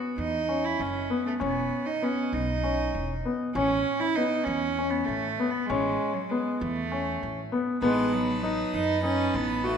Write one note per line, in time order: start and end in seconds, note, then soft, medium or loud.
0.00 0.35 B3 medium
0.18 0.72 E2 medium
0.18 0.66 D#4 medium
0.49 0.96 C#4 medium
0.65 0.82 E4 medium
0.79 1.07 F#1 medium
0.79 1.25 C#4 medium
1.10 1.33 B3 medium
1.26 1.33 A3 medium
1.40 1.68 E1 medium
1.40 1.87 B3 medium
1.40 1.87 C#4 medium
1.86 2.05 D#4 medium
2.02 2.49 B3 medium
2.02 2.35 C#4 medium
2.33 2.87 B1 medium
2.33 3.25 D#4 medium
2.64 3.10 C#4 medium
2.94 3.21 E1 medium
3.25 3.48 B3 medium
3.55 3.82 A1 loud
3.55 4.02 C#4 medium
4.00 4.16 E4 loud
4.15 4.63 B3 medium
4.15 4.46 D#4 medium
4.44 5.01 E2 medium
4.44 4.92 C#4 medium
4.79 5.25 C#4 medium
4.90 5.06 B3 medium
5.05 5.35 A1 medium
5.05 5.52 A3 medium
5.40 5.62 B3 medium
5.50 5.67 B3 medium
5.66 5.96 A1 medium
5.66 6.15 G#3 medium
5.66 6.16 C#4 medium
6.13 6.30 F#3 medium
6.29 6.62 G#3 medium
6.29 6.77 B3 medium
6.60 7.15 E2 medium
6.60 7.51 A3 medium
6.92 7.38 C#4 medium
7.23 7.49 A1 medium
7.52 7.75 B3 medium
7.81 8.63 A1 medium
7.81 8.15 G#3 medium
7.81 8.29 B3 medium
7.81 9.77 D#4 medium
7.81 9.77 B4 medium
7.81 9.77 A5 medium
8.13 8.76 F#3 medium
8.43 8.89 D#4 medium
8.74 9.27 F#2 medium
8.74 9.04 D#4 medium
9.04 9.38 C#4 medium
9.04 9.50 D#4 medium
9.34 9.77 A1 medium
9.34 9.66 B3 medium
9.64 9.77 A3 medium
9.64 9.77 F#4 medium